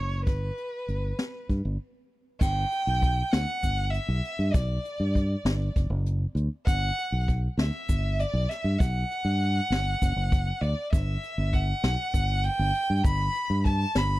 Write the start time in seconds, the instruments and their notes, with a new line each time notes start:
Already playing: fingered electric bass F#1, violin C#5
0.25 fingered electric bass G1, violin B4, kick, closed hi-hat
0.57 closed hi-hat
0.88 fingered electric bass G1, closed hi-hat
1.19 snare, closed hi-hat
1.49 fingered electric bass G2, kick, closed hi-hat
1.65 fingered electric bass G1
2.40 fingered electric bass G1, violin G5, kick, crash, shaker
2.72 closed hi-hat, shaker
2.87 fingered electric bass B1
3.02 kick, closed hi-hat
3.32 fingered electric bass D2, violin F#5, snare, closed hi-hat
3.63 fingered electric bass G1, kick, closed hi-hat, shaker
3.90 violin E5, closed hi-hat
4.08 fingered electric bass B1
4.24 closed hi-hat
4.39 fingered electric bass G2
4.53 fingered electric bass B1, violin D5, kick, closed hi-hat, shaker
4.85 closed hi-hat, shaker
5.00 fingered electric bass G2
5.15 kick, closed hi-hat
5.45 fingered electric bass G1, snare, closed hi-hat
5.76 fingered electric bass F#1, kick, closed hi-hat
5.90 fingered electric bass F#1
6.06 closed hi-hat
6.35 fingered electric bass D2, closed hi-hat
6.66 fingered electric bass G1, violin F#5, kick, closed hi-hat, shaker
6.98 closed hi-hat, shaker
7.12 fingered electric bass B1
7.28 kick, closed hi-hat
7.58 fingered electric bass D2, violin E5, snare, closed hi-hat
7.89 fingered electric bass G1, kick, closed hi-hat, shaker
8.20 violin D5, closed hi-hat
8.33 fingered electric bass B1
8.49 violin E5, snare, closed hi-hat
8.64 fingered electric bass G2
8.79 fingered electric bass B1, violin F#5, kick, closed hi-hat, shaker
9.11 closed hi-hat
9.25 fingered electric bass G2
9.42 closed hi-hat
9.70 fingered electric bass G1, snare, closed hi-hat
10.02 fingered electric bass F#1, kick, closed hi-hat, shaker
10.16 fingered electric bass F#1
10.32 kick, closed hi-hat, shaker
10.61 fingered electric bass D2, violin D5, closed hi-hat
10.92 fingered electric bass G1, violin E5, kick, closed hi-hat, shaker
11.23 closed hi-hat, shaker
11.38 fingered electric bass G1
11.53 violin F#5, kick, closed hi-hat
11.83 fingered electric bass B1, snare, closed hi-hat
12.14 fingered electric bass G1, kick, closed hi-hat, shaker
12.44 violin G5, closed hi-hat
12.59 fingered electric bass G1
12.74 closed hi-hat
12.90 fingered electric bass G2
13.04 fingered electric bass G1, violin B5, kick, closed hi-hat, shaker
13.35 closed hi-hat, shaker
13.50 fingered electric bass G2
13.65 violin A5, kick, closed hi-hat
13.95 fingered electric bass G1, violin B5, snare, closed hi-hat